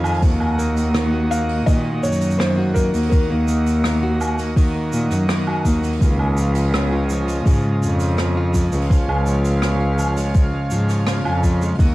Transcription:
Already playing: nylon-string guitar F2 D#3 G#3 F4, accordion F4 D#5 G#5
0.04 nylon-string guitar C4, open hi-hat, low woodblock, shaker
0.14 open hi-hat
0.22 cello D#2, nylon-string guitar D#3, accordion A#3 F#4 D#5, kick, open hi-hat, shaker
0.40 nylon-string guitar A#3, low woodblock
0.59 nylon-string guitar A#3, open hi-hat, shaker
0.77 open hi-hat, shaker
0.94 nylon-string guitar D#3, cross-stick, open hi-hat, shaker
1.12 nylon-string guitar F#4
1.31 nylon-string guitar A#3, felt piano F5, shaker
1.49 nylon-string guitar A#3, open hi-hat
1.66 cello A#2, nylon-string guitar D#3, felt piano D#5, kick, open hi-hat, shaker
1.85 nylon-string guitar A#3
2.03 cello F#2, nylon-string guitar A#3, felt piano C#5, shaker
2.12 shaker
2.21 open hi-hat, shaker
2.31 shaker
2.38 nylon-string guitar D#3, felt piano C5, cross-stick, open hi-hat, shaker
2.58 nylon-string guitar F#4
2.74 nylon-string guitar A#3, felt piano A#4, kick, open hi-hat, shaker
2.94 cello D#2, nylon-string guitar A#3, open hi-hat, shaker
3.03 open hi-hat
3.09 nylon-string guitar D#3, felt piano A#4, kick, open hi-hat, shaker
3.29 cello D#2, nylon-string guitar A#3
3.48 nylon-string guitar A#3, open hi-hat, shaker
3.66 open hi-hat, shaker
3.84 nylon-string guitar D#3, cross-stick, open hi-hat, shaker
4.03 nylon-string guitar F#4
4.21 nylon-string guitar A#3, low woodblock, shaker
4.38 nylon-string guitar A#3, open hi-hat, shaker
4.56 nylon-string guitar D#3, kick, open hi-hat, shaker
4.75 nylon-string guitar A#3
4.93 cello A#2, nylon-string guitar A#3, shaker
5.11 cello F#2, cross-stick, open hi-hat, shaker
5.29 nylon-string guitar D#3, cross-stick, open hi-hat, shaker
5.47 nylon-string guitar F#4, low woodblock
5.65 cello D#2, nylon-string guitar A#3, kick, open hi-hat, shaker
5.83 nylon-string guitar A#3, open hi-hat, shaker
5.93 open hi-hat
6.01 cello C#2, nylon-string guitar C#3, accordion C#4 F4, kick, open hi-hat, shaker
6.19 nylon-string guitar G#3, low woodblock
6.37 nylon-string guitar F3, open hi-hat, shaker
6.55 open hi-hat, shaker
6.74 nylon-string guitar C#3, cross-stick, open hi-hat, shaker
6.92 nylon-string guitar F4
7.10 nylon-string guitar F3, shaker
7.28 nylon-string guitar G#3, open hi-hat, shaker
7.46 cello G#2, nylon-string guitar C#3, kick, open hi-hat, shaker
7.49 shaker
7.51 shaker
7.53 shaker
7.55 shaker
7.57 shaker
7.60 shaker
7.62 nylon-string guitar G#3, shaker
7.82 cello F2, nylon-string guitar F3, shaker
8.00 open hi-hat, shaker
8.18 nylon-string guitar C#3, cross-stick, open hi-hat, shaker
8.37 nylon-string guitar F4
8.54 nylon-string guitar F3, kick, open hi-hat, shaker
8.72 cello C#2, nylon-string guitar G#3, open hi-hat, shaker
8.81 open hi-hat
8.90 nylon-string guitar C#3, accordion F5, kick, open hi-hat, shaker
9.09 cello C#2, nylon-string guitar G#3, low woodblock
9.26 nylon-string guitar F3, open hi-hat, shaker
9.45 open hi-hat, shaker
9.62 nylon-string guitar C#3, cross-stick, open hi-hat, shaker
9.81 nylon-string guitar F4
9.99 nylon-string guitar F3, low woodblock, shaker
10.17 nylon-string guitar G#3, open hi-hat, shaker
10.34 nylon-string guitar C#3, kick, open hi-hat, shaker
10.54 nylon-string guitar G#3
10.71 cello G#2, nylon-string guitar F3, shaker
10.89 cross-stick, open hi-hat, shaker
11.06 nylon-string guitar C#3, cross-stick, open hi-hat, shaker
11.25 cello F2, nylon-string guitar F4, open hi-hat, low woodblock
11.43 nylon-string guitar F3, kick, open hi-hat, shaker
11.61 nylon-string guitar G#3, shaker
11.70 open hi-hat
11.75 open hi-hat
11.79 cello D#2, nylon-string guitar D#3, accordion A#3 F#4 D#5, kick, open hi-hat, shaker
11.84 open hi-hat

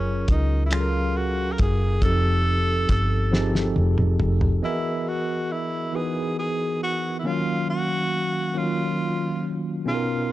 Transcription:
Already playing: fingered electric bass F#1, tine electric piano F#3 C#4 F4 G#4 A#4, tenor saxophone C#4
0.28 fingered electric bass C#2, tenor saxophone D#4, kick, closed hi-hat
0.66 tenor saxophone E4
0.71 tine electric piano F#3 C#4 G#4 A4 F5, tenor saxophone F4, finger snap, closed hi-hat
0.81 tine electric piano A#4
1.16 tenor saxophone F#4
1.52 tenor saxophone A#4
1.58 fingered electric bass F#1, tenor saxophone G#4, kick, closed hi-hat
2.01 fingered electric bass F1, tine electric piano F3 C4 D#4 G4 A4, tenor saxophone A4, kick, closed hi-hat
2.89 fingered electric bass G1, kick, closed hi-hat
3.31 tine electric piano F3 C4 D#4 G4 G#4, snare
3.41 tine electric piano A4
3.55 snare
3.76 fingered electric bass F1, high tom
3.98 mid tom
4.20 fingered electric bass F1, mid tom
4.41 floor tom
4.62 tine electric piano E3 B3 F#4 G#4 A#4 D#5, tenor saxophone E4
5.08 tenor saxophone F#4
5.51 tenor saxophone E4
5.92 tine electric piano E3 B3 D#4 F#4 G#4 B4, tenor saxophone G#4
6.39 tenor saxophone G#4
6.83 tenor saxophone F#4
7.19 tenor saxophone E4
7.23 tine electric piano D#3 F#3 A#3 C#4 F5, tenor saxophone F4
7.70 tenor saxophone F#4
8.54 tine electric piano D#3 F#3 A#3 C#4 F4, tenor saxophone F4
9.85 tine electric piano B2 B3 C#4 D#4 G#4, tenor saxophone F4
9.94 tine electric piano A#4

